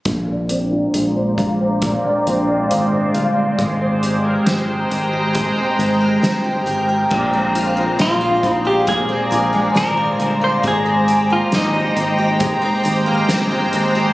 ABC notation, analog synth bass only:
X:1
M:4/4
L:1/16
Q:1/4=68
K:Bbmix
V:1 name="Analog synth bass" clef=bass
B,,,4 B,,,2 B,,,3 z B,,,2 A,,,2 G,,,2 | A,,,4 A,,,2 A,,,3 z A,,,2 G,,,2 A,,,2 | B,,,4 B,,,2 B,,,3 z B,,,2 A,,,2 G,,,2 | A,,,4 A,,,2 A,,,3 z A,,,2 G,,,2 A,,,2 |]